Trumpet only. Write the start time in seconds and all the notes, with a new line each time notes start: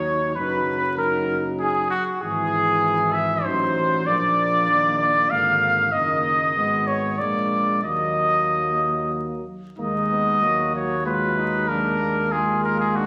Already playing: C#5
0.35 B4
0.99 A#4
1.59 G#4
1.90 F#4
2.21 G#4
3.13 E5
3.44 C5
4.06 D5
4.99 D5
5.30 F5
5.92 D#5
6.87 C#5
7.19 D5
7.84 D#5
9.79 D#5
10.75 C#5
11.06 B4
11.68 A#4
12.32 G#4
12.64 A#4
12.80 G#4
12.96 F#4